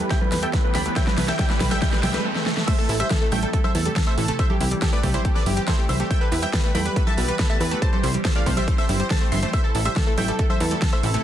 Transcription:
Already playing: riser
0.10 A3 E5 G5 G6, kick, snare, closed hi-hat
0.21 A3 B4 B5, high conga
0.32 E2 A3 B4 B5, snare, open hi-hat
0.43 A4 E5 G5 G6, closed hi-hat
0.53 A3 B4 B5, kick, snare, closed hi-hat
0.64 A3 B4 B5
0.75 D2 A4 G5 B5 B6, snare, open hi-hat
0.86 A3 B4 B5, closed hi-hat
0.96 A3 E5 G5 G6, kick, snare, closed hi-hat
1.07 A3 B4 B5, snare, high conga
1.18 C2 A3 B4 B5, snare, open hi-hat
1.28 A4 E5 G5 G6, snare, closed hi-hat
1.39 A3 E5 G5 G6, kick, snare, closed hi-hat
1.50 A3 B4 B5, snare
1.60 C2 A3 B4 B5, kick, snare, open hi-hat, high conga
1.71 A4 E5 G5 G6, snare, closed hi-hat
1.82 A3 E5 G5 G6, kick, snare, closed hi-hat
1.93 A3 B4 B5, snare
2.03 C2 A3 E5 G5 G6, snare, open hi-hat, high conga
2.14 A3 B4 B5, snare, closed hi-hat
2.25 A3
2.36 A3, snare
2.46 A3, snare
2.57 A3, snare
2.67 A3 C5 E5 E6, kick, closed hi-hat, crash
2.78 A4 A5
2.89 A1 E4 A4 A5, open hi-hat
3.00 G3 C5 E5 E6, closed hi-hat
3.10 A4 A5, kick, snare, closed hi-hat
3.21 A3 A4 A5
3.32 A1 A3 E5 G5 G6, open hi-hat, high conga
3.43 G3 A4 A5, closed hi-hat
3.53 A3 A4 A5, kick, closed hi-hat
3.64 A4 C5 E5 E6, high conga
3.75 E2 E4 A4 A5, open hi-hat
3.85 G3 A4 A5, closed hi-hat
3.96 A4 A5, kick, snare, closed hi-hat
4.07 A3 C5 E5 E6
4.18 A1 E3 A4 A5, open hi-hat
4.28 A3 A4 A5, closed hi-hat
4.39 A3 C5 E5 E6, kick, closed hi-hat
4.50 G4 A4 G5, high conga
4.60 C2 E4 G4 G5, open hi-hat
4.71 G3, closed hi-hat
4.82 G4 A4 G5, kick, snare, closed hi-hat
4.93 A3 B4 D5 D6
5.03 C2 A3 G4 G5, kick, open hi-hat, high conga
5.14 G3 E4 C5 C6, closed hi-hat
5.25 A3 G4 G5, kick, closed hi-hat
5.35 A4 B4 D5 D6, snare
5.46 G1 E4 G4 G5, open hi-hat, high conga
5.57 G3 G4 G5, closed hi-hat
5.68 E4 A4 C5 C6, kick, snare, closed hi-hat
5.78 A3 G4 G5
5.89 C2 E3 C5 E5 E6, open hi-hat, high conga
6.00 A3 G4 G5, closed hi-hat
6.10 A3 E5 G5 G6, kick, closed hi-hat
6.21 A4 B4 B5
6.32 E2 E4 B4 B5, open hi-hat
6.42 G3 E5 G5 G6, closed hi-hat
6.53 A4 B4 B5, kick, snare, closed hi-hat
6.64 A3 B4 B5
6.75 E2 A3 G5 B5 B6, open hi-hat, high conga
6.85 G3 B4 B5, closed hi-hat
6.96 A3 B4 B5, kick, closed hi-hat
7.07 A4 E5 A5 A6, high conga
7.17 B1 E4 B4 B5, open hi-hat
7.28 G3 B4 B5, closed hi-hat
7.39 A4 B4 B5, kick, snare, closed hi-hat
7.50 A3 E5 A5 A6
7.60 E2 E3 B4 B5, open hi-hat
7.71 A3 B4, closed hi-hat
7.82 A3 C5 A5 A6, kick, closed hi-hat
7.93 A4 C5 C6, high conga
8.03 C2 E4 C5 C6, open hi-hat
8.14 G3, closed hi-hat
8.25 A4 C5 C6, kick, snare, closed hi-hat
8.35 A3 D5 F5 F6
8.46 C2 A3 C5 C6, kick, open hi-hat, high conga
8.57 G3 C5 E5 E6, closed hi-hat
8.68 A3 C5 C6, kick, closed hi-hat
8.78 A4 C5 E5 E6, snare
8.89 G1 E4 C5 C6, open hi-hat, high conga
9.00 G3 C5 C6, closed hi-hat
9.10 A4 C5 A5 A6, kick, snare, closed hi-hat
9.21 A3 C5 C6
9.32 G1 E3 E5 C6 C7, open hi-hat, high conga
9.42 A3 C5 C6, closed hi-hat
9.53 A3 C5 E5 E6, kick, closed hi-hat
9.64 A4 A5
9.74 A1 E4 A4 A5, open hi-hat
9.85 G3 C5 E5 E6, closed hi-hat
9.96 A4 A5, kick, snare, closed hi-hat
10.07 A3 A4 A5
10.18 A1 A3 E5 G5 G6, open hi-hat, high conga
10.28 G3 A4 A5, closed hi-hat
10.39 A3 A4, kick, closed hi-hat
10.50 A4 C5 E5 E6, high conga
10.60 E2 E4 A4 A5, open hi-hat
10.71 G3 A4 A5, closed hi-hat
10.82 A4, kick, snare, closed hi-hat
10.93 A3 C5 E5 E6
11.03 A1 E3 A4 A5, open hi-hat
11.14 A3 A4 A5, closed hi-hat

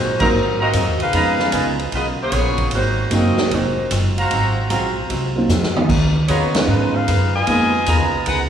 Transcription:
Already playing: G#2 A#2 F#3 A#3 C4 D#4 F4 F#4 C5
0.20 F#3 A#3 C4 D#4 F4 F#4 A#4 C5 F5 A#5, kick, crash
0.34 G#2 F#3 C4 F4
0.60 C4 F#4 A#4 C5 D#5 F5 A#5
0.73 F#2 G#2 F#3 C4 F4, kick, hi-hat pedal, ride
0.87 D#2
1.00 C2 D#4 G#4 B4 F5, ride
1.12 F2 C#3 G#3 B3 C#4 D#4 F4 B4 D#5 A#5, kick, ride
1.17 A#4
1.39 snare
1.52 C#2 C#3 B3 F4 A#4 B4 D#5 G#5, kick, hi-hat pedal, ride
1.79 ride
1.92 B1 C#3 B3 F4 G#4 D#5, kick, ride
1.97 A#4
2.22 B3 F4 G#4 C#5
2.32 A#1 C#3 B3 F4 A#4, kick, hi-hat pedal, ride
2.58 kick, ride
2.71 G#1 G#2 F#3 A#3, kick, ride
2.75 C4 D#4 F4 F#4 C5
3.11 F#1 G#2 F#3 A#3 C4 D#4 F4 F#4 A#4 D#5 F5, kick, hi-hat pedal, ride
3.38 muted upright bass stroke, snare
3.51 F1 G#2 F#3 A#3 C4 D#4 F#4 C5, kick, ride
3.55 F4
3.91 F#1 G#2 F#3 C4 F4, kick, hi-hat pedal, ride
4.17 F#4 C5 F5 A#5, ride
4.30 G#1 G#2 F#3 C4 F4, kick, ride
4.70 A#1 G#2 F#3 C4 F4 F#4 C5 F5 A#5, kick, hi-hat pedal, ride
5.09 C2 G#2 F#3 C4 F4, kick, ride
5.35 F#3 A#3 C4 D#4 F4
5.49 F2 G#2 F#3 C4 F4, snare, hi-hat pedal
5.63 snare
5.75 G#3 A#3 B3 D#4 F4, mid tom
5.88 C#2 C#3 B3 F4 A#4, kick, crash
6.28 D#2 C#3 B3 F4 G#4 A#4 B4 C#5 D#5 A#5, kick, hi-hat pedal, ride
6.54 G#3 B3 C#4 D#4 F4 B4, snare, ride
6.68 G#2 C#3 B3 F4 A#4
6.95 D#4 G#4 B4 F5
7.08 F#2 C#3 B3 F4 A#4, kick, hi-hat pedal, ride
7.35 F4 B4 D#5 G#5
7.47 C#3 G#3 A#3 B3 D#4 F4, kick, ride
7.51 A#4
7.86 D#2 C#3 B3 F4 A#4 B4 D#5 A#5, kick, hi-hat pedal, ride
8.00 C#2
8.14 B1
8.26 C#2 C#3 B3 D#4 F4 G#4 B4 F#5, kick, ride
8.30 A#4

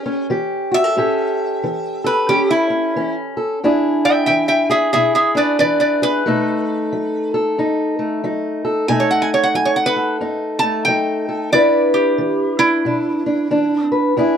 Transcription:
Already playing: E3 G4 A4
0.06 C#4
0.30 E3 G4
0.72 F#4 E5
0.84 A4
0.97 A2 C#4 G4 A4
1.64 E3
2.04 A4 B4
2.29 E3 C#4 G4
2.51 E4
2.70 C#4
2.96 E3 C#4
3.37 A4
3.64 E2 D4 E4 G#4
4.05 E5 G5
4.26 E3 E5 G5
4.48 E5 G5
4.70 G#4 E5
4.93 B2 E4 G#4 E5
5.15 G#4 E5
5.35 D4 B4 D5
5.59 E3 E4 B4 D5
5.80 B4 D5
6.02 G#4 B4
6.26 B2 A3 D#4 A4
6.93 F#3
7.34 A4
7.58 F#2 D#4
7.99 A3
8.24 F#3 D#4
8.65 A4
8.88 B2 A3 D#4 A4 G#5
9.00 C#5
9.11 F#5
9.22 G#5
9.34 C#5
9.43 F#5
9.55 F#3 G#5
9.65 C#5
9.76 F#5
9.86 B4
9.96 A4
10.21 F#2 D#4
10.59 A3 A5
10.85 F#3 D#4 G5
11.29 A4
11.52 E2 D4 E4 B4 D5
11.94 G4
12.18 E3
12.59 D4 E4
12.85 B2 D4
13.26 D4
13.51 E3 D4
13.92 B4
14.17 E2 D4 E4 G#4

